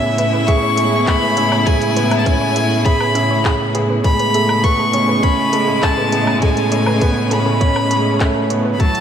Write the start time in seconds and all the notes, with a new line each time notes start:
Already playing: A2 C#3 G#3 B3 C#4 E4 E5
0.18 E4 B4, closed hi-hat
0.33 B4
0.47 G#4 E5 C#6, kick, closed hi-hat
0.63 C#5
0.77 G#3 G#4, closed hi-hat
1.06 B3 B4 B5, kick, clap
1.22 B4
1.37 C#4 E5, closed hi-hat
1.52 C#5, low woodblock
1.66 G#3 G#4 G#5, kick, closed hi-hat
1.82 closed hi-hat
1.96 B3 B4, closed hi-hat
2.11 B4, closed hi-hat, low woodblock
2.19 A5
2.25 C#4 E5 G#5, kick, closed hi-hat
2.41 C#5
2.56 E4 G#4, closed hi-hat
2.85 G#4 B4 B5, kick, closed hi-hat
3.01 B4, low woodblock
3.15 C#4 E5, closed hi-hat
3.31 C#5
3.45 G#4, kick, clap
3.75 G#4 B4, closed hi-hat
3.90 B4
4.04 A2 C#3 G#3 C#5 B5, kick, closed hi-hat
4.19 B4, closed hi-hat
4.34 A3 G#4, closed hi-hat
4.49 low woodblock
4.64 B3 A4 C#6, kick, closed hi-hat
4.79 A4
4.93 C#4 C#5, closed hi-hat
5.08 B4
5.23 C#4 G#4 B5, kick, closed hi-hat
5.53 G#3 A4, closed hi-hat
5.68 A4
5.83 A3 C#5 A5, kick, clap
5.98 B4
6.12 B3 G#4, closed hi-hat
6.27 low woodblock
6.42 G#3 C#4 A4 G#5, kick, closed hi-hat
6.57 A4, closed hi-hat
6.72 A3 C#5, closed hi-hat
6.86 B4, low woodblock
7.01 B3 G#4, kick, closed hi-hat
7.31 C#4 A4 B5, closed hi-hat
7.46 A4
7.60 C#4 C#5, kick, closed hi-hat
7.76 B4, low woodblock
7.91 G#3 G#4, closed hi-hat
8.20 A3 A4, kick, clap
8.36 A4
8.50 B3 C#5, closed hi-hat
8.65 B4
8.74 B5
8.79 A2 E3 F#3 A3 F#4 A5, kick, closed hi-hat
8.95 closed hi-hat